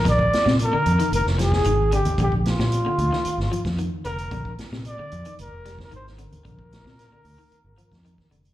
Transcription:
<<
  \new Staff \with { instrumentName = "Trumpet" } { \time 4/4 \key bes \mixolydian \tempo 4 = 113 d''4 bes'4 bes'8 aes'4 g'8 | g'8 f'2~ f'8 r8 bes'8~ | bes'8 r8 d''4 bes'8. bes'16 c''8 bes'8~ | bes'2.~ bes'8 r8 | }
  \new Staff \with { instrumentName = "Clean electric guitar" } { \clef bass \time 4/4 \key bes \mixolydian r8. c8 d8 ees8 r16 f8 ees8 d8 | d8 r8. d8 ees8 r16 f8 ees8 d8 | d8 r16 c8 d8 ees8 r16 g8 ees8 d8 | d8 r16 c8 d8 ees8 r16 f8 ees8 d8 | }
  \new Staff \with { instrumentName = "Fingered electric bass" } { \clef bass \time 4/4 \key bes \mixolydian bes,,8 r16 bes,8 r16 f,16 r16 f,,16 f,,8. aes,,8. ees,16 | bes,,8. bes,8 r16 d,16 r8 aes,,16 r16 f,8 r16 f,,8 | bes,,8 r16 bes,8 r16 f,16 r16 f,,16 f,,8. aes,,8. ees,16 | bes,,8. bes,8 r16 d,16 r8 aes,,16 r16 f,8 r16 f,,8 | }
  \new DrumStaff \with { instrumentName = "Drums" } \drummode { \time 4/4 <hh bd sn>16 bd16 <hh sn>16 sn16 hh8 hh16 hh16 hh16 sn16 <hh sn>16 <bd sn>16 hh8 hh16 hh16 | <hh bd>16 bd16 <hh sn>16 sn16 hh8 hh16 sn16 hh16 sn16 hh16 <hh bd sn>16 hh8 hh16 hh16 | <hh bd>16 bd16 <hh sn>16 sn16 hh8 hh16 hh16 hh8 <hh sn>16 <bd sn>16 hh16 sn16 hh16 hh16 | <hh bd>16 bd16 <hh sn>16 <bd sn>16 <hh sn>8 hho8 hh8 hh16 <hh bd sn>16 hh16 <bd sn>16 hh16 hh16 | }
>>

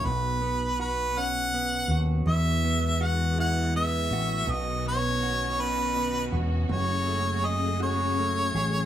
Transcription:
<<
  \new Staff \with { instrumentName = "Harmonica" } { \time 6/8 \key b \mixolydian \tempo 4. = 54 b'4 b'8 fis''4 r8 | e''4 fis''8 fis''8 e''4 | dis''8 cis''4 b'4 r8 | cis''4 dis''8 cis''4. | }
  \new Staff \with { instrumentName = "Clean electric guitar" } { \time 6/8 \key b \mixolydian b,8 b8 fis'8 cis'8 b8 fis'8 | e8 b8 fis'8 e'8 b8 fis'8 | b,8 b8 fis'8 cis'8 b8 fis'8 | fis,8 a8 gis'8 fis'8 a8 gis'8 | }
  \new Staff \with { instrumentName = "String section" } { \time 6/8 \key b \mixolydian << { r2. | fis'2.~ | fis'2.~ | fis'2. | } \\ { r2. | <e gis b>2. | <dis b cis'>2. | <cis a gis'>2. | } >> }
  \new Staff \with { instrumentName = "Fretless electric bass" } { \clef bass \time 6/8 \key b \mixolydian b,,2~ b,,8 dis,8 | e,2~ e,8 a,,8 | b,,2~ b,,8 e,,8 | fis,,2~ fis,,8 a,,8 | }
>>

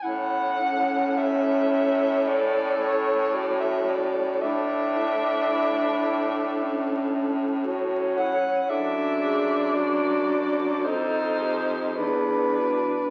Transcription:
<<
  \new Staff \with { instrumentName = "Soprano saxophone" } { \time 4/4 \key a \major \tempo 4 = 56 fis''4 e''4 d''8 cis''8 d''16 e''16 d''8 | e''2. r8 fis''8 | e''4 d''4 c''4 b'4 | }
  \new Staff \with { instrumentName = "Clarinet" } { \time 4/4 \key a \major e'8 cis'4. a'4 fis'4 | e'8 d'8 e'8. r16 cis'4 fis'8 e'8 | a'8 gis'8 fis'4 a'8 g'8 gis'8 fis'8 | }
  \new Staff \with { instrumentName = "Tenor saxophone" } { \time 4/4 \key a \major cis'1 | d'2~ d'8. r16 cis'4 | d'2 ees'4 d'4 | }
  \new Staff \with { instrumentName = "Baritone saxophone" } { \clef bass \time 4/4 \key a \major a,1 | a,2.~ a,8. r16 | fis,2 f,4 e,4 | }
>>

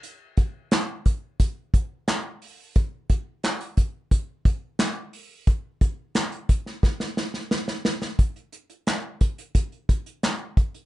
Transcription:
\new DrumStaff \with { instrumentName = "Drums" } \drummode { \time 4/4 \tempo 4 = 88 hh8 <hh bd>8 <hc hh sn>8 <hh bd>8 <hh bd>8 <hh bd>8 <hc hh sn>8 hho8 | <hh bd>8 <hh bd>8 <hc hh sn>16 hh16 <hh bd>8 <hh bd>8 <hh bd>8 <hc hh sn>8 hho8 | <hh bd>8 <hh bd>8 <hc hh sn>16 hh16 <hh bd>16 sn16 <bd sn>16 sn16 sn16 sn16 sn16 sn16 sn16 sn16 | <hh bd>16 hh16 hh16 hh16 <hc hh sn>8 <hh bd>16 hh16 <hh bd>16 hh16 <hh bd>16 hh16 <hc hh sn>8 <hh bd>16 hh16 | }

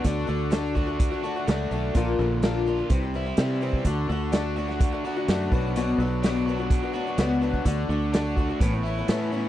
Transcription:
<<
  \new Staff \with { instrumentName = "Overdriven electric guitar" } { \time 4/4 \key d \major \tempo 4 = 126 d8 d8 d'8 fis'8 d'8 fis'8 a8 d'8 | bes,8 d8 d'8 f'8 c8 e'8 g8 c'8 | d8 d8 d'8 fis'8 d'8 fis'8 a8 b,8 | b,8 fis8 d'8 fis'8 d'8 fis'8 b8 d'8 |
d8 d8 d'8 fis'8 a,8 e'8 b8 cis'8 | }
  \new Staff \with { instrumentName = "Twelve-string acoustic guitar" } { \time 4/4 \key d \major <d a d' fis'>8 <d a d' fis'>8 <d a d' fis'>8 <d a d' fis'>16 <a d' fis'>8 <a d' fis'>16 <d a d' fis'>16 <a d' fis'>16 <d a d' fis'>8 <d a d' fis'>8 | <bes, d bes d' f'>8 <d bes d' f'>8 <bes, d bes d' f'>8 <d bes d' f'>16 <bes d' f'>16 <c e g c' e'>16 <g c' e'>16 <e g c' e'>16 <g c' e'>16 <c e g c' e'>8 <e g c' e'>8 | <d a d' fis'>8 <d a d' fis'>8 <d a d' fis'>8 <d a d' fis'>16 <a d' fis'>8 <a d' fis'>16 <d a d' fis'>16 <a d' fis'>16 <d a d' fis'>8 <fis b d' fis'>8 | <b, fis b d' fis'>8 <fis b d' fis'>8 <b, fis b d' fis'>8 <fis b d' fis'>16 <b d' fis'>8 <b d' fis'>16 <fis b d' fis'>16 <b d' fis'>16 <b, fis b d' fis'>8 <fis b d' fis'>8 |
<d a d' fis'>8 <d a d' fis'>8 <d a d' fis'>8 <d a d' fis'>16 <a d' fis'>16 <a, e b cis' e'>16 <b cis' e'>16 <e b cis' e'>16 <b cis' e'>16 <a, e b cis' e'>8 <e b cis' e'>8 | }
  \new Staff \with { instrumentName = "Fingered electric bass" } { \clef bass \time 4/4 \key d \major d,8 d,2 r8 cis,8 b,,8 | bes,,8 bes,,4. c,4 c4 | d,8 d,2 r8 fis,8 b,,8~ | b,,8 b,,2 r8 cis,4 |
d,8 d,4. a,,4 a,4 | }
  \new DrumStaff \with { instrumentName = "Drums" } \drummode { \time 4/4 <hh bd>4 <hh sn>8 bd8 <hh bd>4 <hh sn>4 | <hh bd>4 <hh sn>4 <hh bd>4 <hh sn>8. bd16 | <hh bd>4 <hh sn>8. sn16 <hh bd>4 <hh sn>8 bd8 | hh4 <hh sn>4 <hh bd>4 <hh sn>8. bd16 |
<hh bd>4 <hh sn>8 bd8 <hh bd>4 <hh sn>4 | }
>>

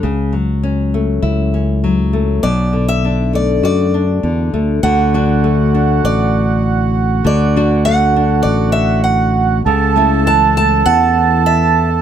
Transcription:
<<
  \new Staff \with { instrumentName = "Steel-string acoustic guitar" } { \time 4/4 \key d \major \tempo 4 = 100 r1 | d''8. e''8. d''8 d''4. r8 | fis''2 d''4 r4 | d''4 fis''4 d''8 e''8 fis''8. r16 |
r4 a''8 a''8 fis''4 e''8. r16 | }
  \new Staff \with { instrumentName = "Accordion" } { \time 4/4 \key d \major r1 | r1 | fis'1~ | fis'1 |
a'1 | }
  \new Staff \with { instrumentName = "Nylon-string guitar" } { \time 4/4 \key d \major << { r4 cis'8 a8 e'8 cis'4 a8 | r4 d'8 a8 fis'8 d'4 a8 | r8 <d' fis'>4 d'2~ d'8 | r8 <d' fis'>4 d'2~ d'8 |
r8 <a cis' e'>4 a2~ a8 | } \\ { cis8 fis2~ fis8 fis4 | b,8 d2~ d8 d4 | d4 a2. | d4 a2. |
cis4 e2. | } >> }
  \new Staff \with { instrumentName = "Fingered electric bass" } { \clef bass \time 4/4 \key d \major cis,2 cis,2 | b,,2 fis,4 e,8 d,8 | d,2 a,,2 | d,2 a,,2 |
cis,2 e,2 | }
>>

